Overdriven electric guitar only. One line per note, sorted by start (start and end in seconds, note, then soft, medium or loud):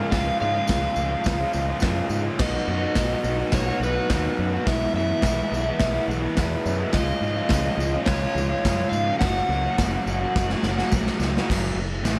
0.00 0.12 F3 loud
0.00 0.12 G#3 medium
0.00 0.14 C#4 medium
0.00 0.15 F4 medium
0.11 0.67 C#3 medium
0.11 0.37 F3 loud
0.11 0.39 G#3 medium
0.16 0.40 C#4 medium
0.16 0.42 F4 loud
0.39 0.69 F3 medium
0.39 0.57 G#3 medium
0.39 0.55 C#4 medium
0.43 0.53 F4 medium
0.54 0.70 C#4 medium
0.54 0.72 F4 medium
0.58 0.70 G#3 medium
0.68 1.25 C#3 medium
0.68 0.95 F3 medium
0.68 0.97 G#3 medium
0.68 0.98 C#4 medium
0.73 1.00 F4 loud
0.96 1.39 F3 medium
0.96 1.13 G#3 medium
0.96 1.11 C#4 medium
1.01 1.08 F4 medium
1.09 1.40 C#4 medium
1.09 1.37 F4 medium
1.14 1.41 G#3 medium
1.38 1.55 C#4 medium
1.38 1.56 F4 medium
1.43 1.54 G#3 medium
1.52 1.80 F3 medium
1.52 1.72 G#3 medium
1.56 1.70 C#4 medium
1.56 1.67 F4 medium
1.68 1.83 C#4 medium
1.68 1.83 F4 medium
1.73 1.82 G#3 medium
1.80 2.37 C#3 loud
1.80 2.37 F3 loud
1.80 2.27 G#3 loud
1.80 2.24 C#4 loud
1.85 2.22 F4 loud
2.23 2.38 C#4 medium
2.23 2.37 F4 medium
2.28 2.39 G#3 medium
2.39 2.96 B2 medium
2.39 2.66 F#3 medium
2.39 2.68 B3 loud
2.43 2.68 D#4 loud
2.43 2.71 F#4 loud
2.67 2.97 F#3 medium
2.67 2.87 B3 medium
2.67 2.83 D#4 medium
2.72 2.80 F#4 medium
2.82 2.99 D#4 medium
2.82 3.00 F#4 medium
2.87 2.98 B3 medium
2.96 4.09 B2 loud
2.96 3.23 F#3 loud
2.96 3.26 B3 loud
3.00 3.27 D#4 loud
3.00 3.28 F#4 medium
3.24 3.67 F#3 medium
3.24 3.42 B3 medium
3.28 3.40 D#4 medium
3.28 3.37 F#4 medium
3.38 3.68 D#4 medium
3.38 3.65 F#4 medium
3.43 3.70 B3 medium
3.66 3.84 D#4 medium
3.66 3.85 F#4 medium
3.71 3.82 B3 medium
3.81 4.11 F#3 medium
3.81 3.99 B3 medium
3.81 3.98 D#4 medium
3.86 3.94 F#4 medium
3.95 4.13 D#4 medium
3.95 4.14 F#4 medium
4.00 4.12 B3 medium
4.10 4.63 B2 loud
4.10 4.65 F#3 loud
4.10 4.56 B3 loud
4.14 4.54 D#4 loud
4.14 4.52 F#4 loud
4.53 4.67 D#4 medium
4.53 4.66 F#4 medium
4.58 4.66 B3 medium
4.64 5.20 B2 loud
4.64 4.93 E3 medium
4.64 4.96 G#3 loud
4.64 4.97 B3 loud
4.69 4.98 E4 loud
4.94 5.21 E3 medium
4.94 5.12 G#3 medium
4.94 5.09 B3 medium
4.99 5.07 E4 medium
5.08 5.23 B3 medium
5.08 5.24 E4 medium
5.12 5.23 G#3 medium
5.21 5.79 B2 loud
5.21 5.50 E3 loud
5.21 5.52 G#3 loud
5.21 5.53 B3 loud
5.25 5.54 E4 loud
5.51 5.94 E3 medium
5.51 5.67 G#3 medium
5.51 5.66 B3 medium
5.56 5.63 E4 medium
5.64 5.93 B3 medium
5.64 5.90 E4 medium
5.68 5.95 G#3 medium
5.91 6.08 B3 medium
5.91 6.09 E4 medium
5.96 6.07 G#3 medium
6.07 6.35 E3 medium
6.07 6.23 G#3 medium
6.07 6.21 B3 medium
6.07 6.19 E4 medium
6.20 6.37 B3 medium
6.20 6.38 E4 medium
6.25 6.36 G#3 medium
6.35 6.91 B2 loud
6.35 6.92 E3 loud
6.35 6.81 G#3 loud
6.35 6.79 B3 loud
6.39 6.77 E4 loud
6.78 6.92 G#3 medium
6.78 6.93 B3 medium
6.78 6.92 E4 medium
6.91 7.47 C#3 medium
6.91 7.18 F3 loud
6.91 7.19 G#3 medium
6.95 7.22 C#4 medium
6.95 7.23 F4 loud
7.19 7.49 F3 medium
7.19 7.38 G#3 medium
7.19 7.38 C#4 medium
7.24 7.34 F4 medium
7.35 7.52 C#4 medium
7.35 7.52 F4 medium
7.40 7.51 G#3 medium
7.48 8.07 C#3 loud
7.48 7.76 F3 loud
7.48 7.78 G#3 medium
7.52 7.81 C#4 loud
7.52 7.81 F4 loud
7.77 8.21 F3 medium
7.77 7.97 G#3 medium
7.81 7.96 C#4 medium
7.81 7.92 F4 medium
7.93 8.23 C#4 medium
7.93 8.20 F4 medium
7.98 8.25 G#3 medium
8.21 8.39 C#4 medium
8.21 8.39 F4 medium
8.26 8.36 G#3 medium
8.34 8.65 F3 medium
8.34 8.53 G#3 medium
8.39 8.52 C#4 medium
8.39 8.48 F4 medium
8.49 8.67 C#4 medium
8.49 8.67 F4 medium
8.54 8.65 G#3 medium
8.63 9.19 C#3 loud
8.63 9.21 F3 loud
8.63 9.12 G#3 loud
8.68 9.10 C#4 loud
8.68 9.07 F4 loud
9.08 9.22 C#4 medium
9.08 9.21 F4 medium
9.13 9.23 G#3 medium
9.21 9.76 F#2 medium
9.21 9.78 C#3 medium
9.21 9.48 F#3 medium
9.21 9.49 A#3 loud
9.21 9.50 C#4 loud
9.25 9.52 F#4 loud
9.49 9.68 F#3 medium
9.49 9.66 A#3 medium
9.49 9.64 C#4 medium
9.53 9.62 F#4 medium
9.64 9.80 A#3 medium
9.64 9.81 C#4 medium
9.64 9.81 F#4 medium
9.69 9.79 F#3 medium
9.78 10.35 F#2 medium
9.78 10.36 C#3 medium
9.78 10.04 F#3 medium
9.78 10.06 A#3 loud
9.82 10.08 C#4 medium
9.82 10.09 F#4 loud
10.06 10.23 F#3 medium
10.06 10.22 A#3 medium
10.06 10.20 C#4 medium
10.11 10.18 F#4 medium
10.20 10.51 A#3 medium
10.20 10.50 C#4 medium
10.20 10.48 F#4 medium
10.24 10.54 F#3 medium
10.49 10.64 A#3 medium
10.49 10.65 C#4 medium
10.49 10.67 F#4 medium
10.55 10.61 F#3 medium
10.62 10.82 F#3 medium
10.62 10.80 A#3 medium
10.62 10.78 C#4 medium
10.68 10.77 F#4 medium
10.78 10.95 A#3 medium
10.78 10.95 C#4 medium
10.78 10.97 F#4 medium
10.83 10.95 F#3 medium
10.93 11.47 F#2 loud
10.93 11.48 C#3 loud
10.93 11.39 F#3 loud
10.93 11.38 A#3 loud
10.93 11.37 C#4 loud
10.98 11.35 F#4 loud
11.36 11.49 A#3 medium
11.36 11.49 C#4 medium
11.36 11.48 F#4 medium
11.40 11.49 F#3 medium
11.48 11.76 F#2 loud
11.48 11.77 C#3 medium
11.48 11.77 F#3 loud
11.78 12.00 F#2 medium
11.78 12.00 C#3 medium
12.04 12.19 A2 medium
12.04 12.19 E3 medium
12.04 12.19 A3 medium